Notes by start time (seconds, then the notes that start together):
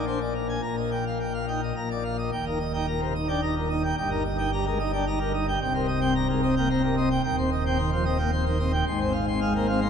Already playing: A#1 A#2
0.07 D4 C5
0.21 D5
0.35 A#4
0.49 G#5
0.62 A#1 A#2 A#5
0.77 D#5
0.91 G5
1.06 F5
1.20 G5
1.34 F5
1.48 D#4 G5
1.63 D#5
1.76 A#1 A#2 A#5
1.91 D5
2.04 F5
2.18 D#5
2.32 D#1 D#2 G5
2.46 D#4 A#4
2.60 D#5
2.74 D#4 G5
2.87 A#2 A#5
3.01 C3 A#4
3.15 D#4 D#5
3.28 D4 G5
3.42 D#4 A#5
3.56 A#2 A#4
3.69 D#4 D#5
3.83 G5
3.97 G1 G2 G5
4.11 D#4 A#4
4.24 D#5
4.38 D#4 G5
4.53 G3 A#5
4.66 G#3 A#4
4.79 D#4 D#5
4.93 D4 G5
5.07 D#4 A#5
5.20 G3 A#4
5.34 D#4 D#5
5.48 G5
5.61 C1 C2 G5
5.74 C4 A#4
5.88 D#5
6.01 C4 G5
6.15 G2 A#5
6.29 G#2 A#4
6.43 C4 D#5
6.57 A#3 G5
6.70 C4 A#5
6.84 G2 A#4
6.97 C4 D#5
7.11 G5
7.24 D#1 D#2 G5
7.38 C4 C5
7.52 D#5
7.66 C4 G5
7.78 D#3 C6
7.92 F3 C5
8.05 C4 D#5
8.19 A#3 G5
8.32 C4 C6
8.46 D#3 C5
8.59 C4 D#5
8.73 G5
8.87 G#1 G#2 C6
9.00 C4 C5
9.13 F5
9.28 C4 C6
9.41 G#3 F5
9.55 A#3 C5
9.68 C4 F5
9.81 A#3 C6